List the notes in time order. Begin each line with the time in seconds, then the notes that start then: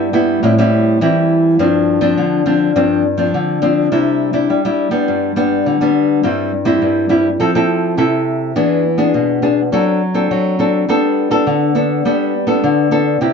Already playing: G2
0.13 G3 B3 E4
0.43 A2 G3 C4 E4
0.58 G3 C4 E4
1.01 E3 G3 C4 E4
1.59 G2 F3 C4 D4
2.01 F3 C4 D4
2.18 D3
2.46 F3 C4 D4
2.76 G2 F3 C4 D4
3.18 F3 C4 D4
3.34 D3
3.62 F3 C4 D4
3.92 C3 G3 D4 E4
4.33 G3 D4 E4
4.50 G3
4.65 G3 D4 E4
4.91 G3 B3 D4
5.08 G2
5.36 G3 B3 D4
5.66 D3
5.81 G3 B3 D4
6.23 G2 G3 C4 E4
6.65 G3 C4 E4
6.82 G2
7.09 G3 C4 E4
7.40 F3 C4 E4 A4
7.55 C4 E4 A4
7.97 C3 C4 E4 A4
8.56 E3 B3 D4 G#4
8.98 B3 D4 G#4
9.14 B2
9.42 B3 D4 G#4
9.72 F#3 C4 D4 A4
10.14 C4 D4 A4
10.31 F#3
10.59 C4 D4 A4
10.89 G3 B3 D4 A4
11.31 B3 D4 A4
11.47 D3
11.75 B3 D4 A4
12.05 G3 B3 D4 A4
12.47 B3 D4 A4
12.64 D3
12.91 B3 D4 A4
13.21 C3 C4 E4 G4